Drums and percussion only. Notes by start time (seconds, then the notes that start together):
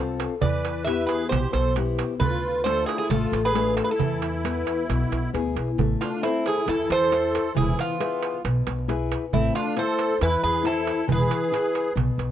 0.20 darbuka tek
0.41 darbuka dum
0.65 darbuka tek
0.87 darbuka tek
1.09 darbuka tek
1.32 darbuka tek, darbuka dum
1.53 darbuka tek
1.76 darbuka tek
1.99 darbuka tek
2.21 darbuka dum
2.66 darbuka tek
2.89 darbuka tek
3.11 darbuka tek, darbuka dum
3.33 darbuka tek
3.55 darbuka tek
3.77 darbuka tek
4.00 darbuka dum
4.12 darbuka tek
4.22 darbuka tek
4.34 darbuka tek
4.45 darbuka tek
4.56 darbuka tek
4.67 darbuka tek
4.90 darbuka tek
5.01 darbuka tek
5.12 darbuka tek
5.35 darbuka tek
5.46 darbuka tek
5.57 darbuka tek
5.68 darbuka tek
5.79 darbuka dum
6.02 darbuka tek
6.14 darbuka tek
6.23 darbuka tek
6.46 darbuka tek
6.57 darbuka tek
6.68 darbuka tek
6.90 darbuka tek
7.02 darbuka tek
7.12 darbuka tek
7.35 darbuka tek
7.57 darbuka dum
7.79 darbuka tek
7.90 darbuka tek
8.01 darbuka tek
8.23 darbuka tek
8.34 darbuka tek
8.45 darbuka tek
8.67 darbuka tek
8.79 darbuka tek
8.89 darbuka tek
9.12 darbuka tek
9.33 darbuka dum
9.55 darbuka tek
9.67 darbuka tek
9.77 darbuka tek
9.99 darbuka tek
10.10 darbuka tek
10.21 darbuka tek
10.54 darbuka tek
10.65 darbuka tek
10.87 darbuka tek
11.09 darbuka dum
11.31 darbuka tek
11.54 darbuka tek
11.75 darbuka tek
11.97 darbuka tek, darbuka dum
12.19 darbuka tek